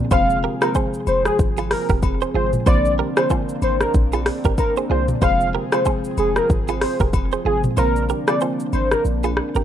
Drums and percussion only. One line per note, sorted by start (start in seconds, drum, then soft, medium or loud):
0.11 kick loud
0.11 high agogo medium
0.11 shaker medium
0.30 shaker medium
0.62 cross-stick loud
0.62 high agogo medium
0.62 shaker medium
0.75 kick medium
0.75 low woodblock medium
0.75 shaker medium
0.94 shaker medium
1.07 high agogo medium
1.07 shaker medium
1.25 cross-stick loud
1.25 shaker soft
1.39 kick loud
1.39 shaker medium
1.57 high agogo medium
1.57 shaker medium
1.71 cross-stick loud
1.71 open hi-hat medium
1.89 kick loud
1.89 shaker medium
2.03 kick loud
2.03 high agogo medium
2.03 shaker medium
2.21 shaker soft
2.53 mid tom medium
2.53 shaker medium
2.66 kick loud
2.66 high agogo medium
2.66 shaker medium
2.85 shaker medium
3.17 cross-stick loud
3.17 high agogo medium
3.17 shaker medium
3.30 kick medium
3.30 low woodblock medium
3.30 shaker medium
3.49 shaker medium
3.62 high agogo medium
3.62 shaker medium
3.81 cross-stick loud
3.81 shaker soft
3.94 kick loud
3.94 shaker medium
4.12 high agogo medium
4.12 shaker medium
4.26 cross-stick loud
4.26 open hi-hat medium
4.44 kick loud
4.44 shaker medium
4.58 kick loud
4.58 high agogo medium
4.58 shaker medium
4.77 shaker soft
5.08 mid tom medium
5.08 shaker medium
5.22 kick loud
5.22 high agogo medium
5.22 shaker medium
5.41 shaker medium
5.72 cross-stick loud
5.72 high agogo medium
5.72 shaker medium
5.85 kick medium
5.85 low woodblock medium
5.85 shaker medium
6.04 shaker medium
6.18 high agogo medium
6.18 shaker medium
6.36 cross-stick loud
6.36 shaker soft
6.50 kick loud
6.50 shaker medium
6.68 high agogo medium
6.68 shaker medium
6.81 cross-stick loud
6.81 open hi-hat medium
7.00 kick loud
7.00 shaker medium
7.13 kick loud
7.13 high agogo medium
7.13 shaker medium
7.32 shaker soft
7.64 mid tom medium
7.64 shaker medium
7.77 high agogo medium
7.77 shaker medium
7.96 shaker medium
8.09 shaker medium
8.28 cross-stick loud
8.28 high agogo medium
8.28 shaker medium
8.41 low woodblock medium
8.41 shaker medium
8.60 shaker medium
8.73 high agogo medium
8.73 shaker medium
8.91 cross-stick loud
8.91 shaker soft
9.05 shaker medium
9.23 high agogo medium
9.23 shaker medium
9.37 cross-stick loud
9.55 shaker medium